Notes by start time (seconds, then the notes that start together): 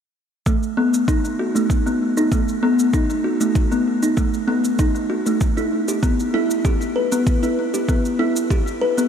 0.46 A3, kick, shaker
0.63 shaker
0.77 B3
0.94 shaker
1.08 D#4, kick, shaker
1.25 shaker
1.39 F#4
1.56 A3, shaker
1.70 kick, shaker
1.86 B3, shaker
2.17 D#4, shaker
2.32 A3, kick, shaker
2.48 shaker
2.63 B3
2.79 shaker
2.93 D#4, kick, shaker
3.10 shaker
3.24 F#4
3.41 A3, shaker
3.55 kick, shaker
3.72 B3, shaker
4.03 D#4, shaker
4.17 A3, kick, shaker
4.34 shaker
4.48 B3
4.64 shaker
4.79 D#4, kick, shaker
4.95 shaker
5.10 F#4
5.26 A3, shaker
5.41 kick, shaker
5.57 E4, shaker
5.88 G4, shaker
6.03 B3, kick, shaker
6.20 shaker
6.34 E4
6.51 shaker
6.65 G4, kick, shaker
6.81 shaker
6.96 B4
7.12 B3, shaker
7.27 kick, shaker
7.43 E4, shaker
7.74 G4, shaker
7.89 B3, kick, shaker
8.05 shaker
8.19 E4
8.36 shaker
8.50 G4, kick, shaker
8.67 shaker
8.81 B4
8.98 B3, shaker